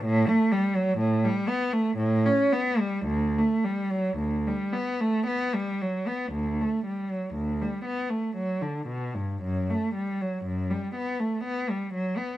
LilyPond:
\new Staff \with { instrumentName = "Cello" } { \clef bass \time 3/4 \key d \major \tempo 4 = 59 a,16 a16 g16 fis16 a,16 g16 b16 a16 a,16 cis'16 b16 g16 | d,16 a16 g16 fis16 d,16 g16 b16 a16 b16 g16 fis16 b16 | d,16 a16 g16 fis16 d,16 g16 b16 a16 fis16 d16 b,16 g,16 | fis,16 a16 g16 fis16 fis,16 g16 b16 a16 b16 g16 fis16 b16 | }